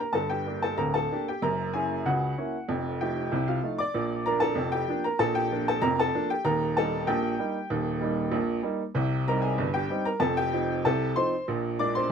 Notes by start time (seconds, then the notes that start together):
0.00 A#4 A#5
0.13 G1 G2 A4 A5
0.30 G4 G5
0.46 A#3 D4 G4
0.62 A4 A5
0.77 D1 D2 A#4 A#5
0.94 A4 A5
1.11 A#3 D4 G4
1.28 G4 G5
1.42 F#1 F#2 A#4 A#5
1.74 A#3 C#4 E4 G#4 G#5
2.06 C#2 C#3 F#4 F#5
2.38 A#3 C#4 E4
2.68 F1 F2
3.01 F3 A3 D#4 G4 G5
3.32 C2 C3
3.48 F4 F5
3.63 F3 A3 D#4
3.79 D5 D6
3.94 A#1 A#2
4.26 F3 A#3 D4 A#4 A#5
4.40 A4 A5
4.55 F1 F2
4.72 G4 G5
4.88 F3 A#3 D4
5.04 A#4 A#5
5.19 A#1 A#2 A4 A5
5.35 G4 G5
5.51 F3 A#3 D4
5.68 A4 A5
5.82 F1 F2 A#4 A#5
5.99 A4 A5
6.15 F3 A#3 D4
6.30 G4 G5
6.45 D#1 D#2 A#4 A#5
6.76 G3 A#3 D#4 A4 A5
7.07 A#1 A#2 G4 G5
7.39 G3 A#3 D#4
7.70 D#1 D#2
8.01 G3 A#3 D#4
8.32 A#1 A#2
8.63 G3 A#3 D#4
8.95 C2 C3
9.28 G3 C4 D#4 A#4 A#5
9.42 G#4 G#5
9.58 G1 G2
9.74 G4 G5
9.90 G3 C4 D#4
10.05 A#4 A#5
10.20 F1 F2 A4 A5
10.37 G4 G5
10.53 F3 C4 D#4
10.85 C2 C3 A4 A5
11.16 F3 C4 D#4 C5 C6
11.48 A#1 A#2
11.79 G#3 A#3 D4 D5 D6
11.95 C5 C6